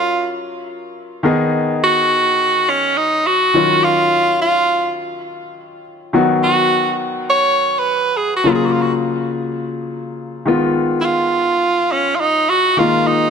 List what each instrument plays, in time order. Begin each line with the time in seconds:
Already playing: grand piano F#3 C#4 F4 A#4, tenor saxophone F4
1.23 grand piano D#3 B3 D#4 G#4
1.83 tenor saxophone F#4
2.69 tenor saxophone C#4
2.98 tenor saxophone D#4
3.27 tenor saxophone F#4
3.54 grand piano D#3 F#3 C#4 F4
3.84 tenor saxophone F4
4.42 tenor saxophone F4
6.13 grand piano D#3 F#3 B3 F#4
6.43 tenor saxophone F#4
7.30 tenor saxophone C#5
7.79 tenor saxophone B4
8.17 tenor saxophone G#4
8.36 tenor saxophone F#4
8.44 grand piano C#3 F#3 A#3 F4
8.55 tenor saxophone G#4
8.66 tenor saxophone F#4
8.72 tenor saxophone F4
8.82 tenor saxophone F#4
10.46 grand piano D#3 G#3 B3 F4
11.01 tenor saxophone E4
11.05 tenor saxophone F4
11.92 tenor saxophone C#4
12.16 tenor saxophone F4
12.21 tenor saxophone D#4
12.49 tenor saxophone F#4
12.77 grand piano D#3 G#3 A#3 F4, tenor saxophone F4
13.07 tenor saxophone D#4